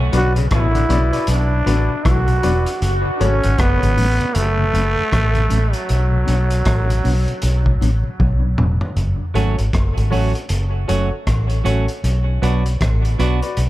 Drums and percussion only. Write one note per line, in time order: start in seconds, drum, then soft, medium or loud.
0.13 closed hi-hat medium
0.36 closed hi-hat medium
0.51 kick loud
0.51 cross-stick loud
0.51 closed hi-hat medium
0.75 closed hi-hat medium
0.90 closed hi-hat medium
1.13 closed hi-hat soft
1.27 closed hi-hat loud
1.67 closed hi-hat medium
2.05 kick loud
2.05 cross-stick loud
2.05 closed hi-hat medium
2.28 closed hi-hat medium
2.43 closed hi-hat medium
2.66 closed hi-hat medium
2.82 closed hi-hat medium
3.21 closed hi-hat medium
3.43 closed hi-hat medium
3.58 kick loud
3.58 cross-stick loud
3.58 closed hi-hat medium
3.83 closed hi-hat medium
3.98 open hi-hat medium
4.21 closed hi-hat medium
4.35 closed hi-hat loud
4.75 closed hi-hat medium
5.13 kick loud
5.13 cross-stick loud
5.13 closed hi-hat medium
5.35 closed hi-hat soft
5.50 closed hi-hat medium
5.73 closed hi-hat medium
5.89 closed hi-hat medium
6.28 closed hi-hat medium
6.50 closed hi-hat medium
6.65 kick loud
6.65 cross-stick loud
6.65 closed hi-hat medium
6.90 closed hi-hat medium
7.05 open hi-hat medium
7.28 closed hi-hat soft
7.42 closed hi-hat loud
7.66 kick medium
7.82 closed hi-hat medium
8.20 kick loud
8.20 high tom medium
8.58 mid tom medium
8.81 floor tom medium
8.97 closed hi-hat medium
9.35 closed hi-hat medium
9.58 closed hi-hat medium
9.73 kick loud
9.73 cross-stick loud
9.73 closed hi-hat medium
9.98 closed hi-hat medium
10.12 open hi-hat medium
10.35 closed hi-hat medium
10.49 closed hi-hat loud
10.89 closed hi-hat medium
11.27 kick loud
11.27 cross-stick loud
11.27 closed hi-hat medium
11.50 closed hi-hat soft
11.66 closed hi-hat medium
11.88 closed hi-hat soft
12.04 closed hi-hat medium
12.43 closed hi-hat medium
12.66 closed hi-hat medium
12.81 kick loud
12.81 cross-stick loud
12.81 closed hi-hat medium
13.05 closed hi-hat medium
13.20 closed hi-hat medium
13.42 closed hi-hat soft
13.57 closed hi-hat loud